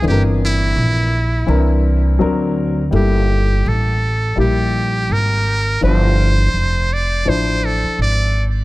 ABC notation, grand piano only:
X:1
M:4/4
L:1/8
Q:"Swing 16ths" 1/4=83
K:Gdor
V:1 name="Grand piano"
[E,CDAB]3 z [E,CDB]2 [^F,CD^A]2 | [G,B,EA]3 z [G,B,EG]3 z | [E,F,DEc]3 z [F,DEc]3 z |]